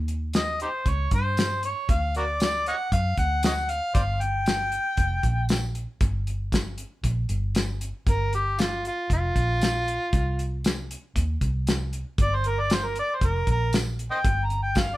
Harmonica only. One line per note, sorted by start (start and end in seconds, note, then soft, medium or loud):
0.36 0.59 D#5 medium
0.62 0.68 D#4 medium
0.62 0.69 G4 medium
0.62 0.90 C5 medium
0.89 1.13 C#5 medium
1.14 1.61 C5 medium
1.65 1.92 C#5 medium
1.91 2.16 F5 medium
2.17 2.24 F#4 medium
2.17 2.24 A#4 medium
2.17 2.40 D5 medium
2.42 2.65 D5 medium
2.68 2.76 C#5 medium
2.68 2.75 D#5 medium
2.68 2.91 F#5 medium
2.93 3.17 F5 medium
3.18 3.42 F#5 medium
3.45 3.52 C#5 medium
3.45 3.52 D#5 medium
3.45 3.72 F#5 medium
3.70 3.94 F5 loud
3.94 4.02 C5 medium
3.94 4.01 D5 medium
3.94 4.23 F5 loud
4.22 5.76 G5 loud
8.09 8.33 A#4 medium
8.34 8.62 G4 medium
8.60 8.84 F4 medium
8.87 9.11 F4 medium
9.13 10.62 F4 loud
12.22 12.37 D5 medium
12.35 12.49 C5 medium
12.47 12.61 A#4 medium
12.60 12.75 D5 medium
12.73 12.87 C5 medium
12.86 12.97 A#4 medium
12.99 13.16 D5 medium
13.15 13.27 C5 medium
13.25 13.49 A#4 medium
13.51 13.74 A#4 loud
14.11 14.18 C5 medium
14.11 14.18 D#5 medium
14.11 14.47 G5 loud
14.45 14.60 A#5 medium
14.62 14.80 G5 medium
14.78 14.96 F5 medium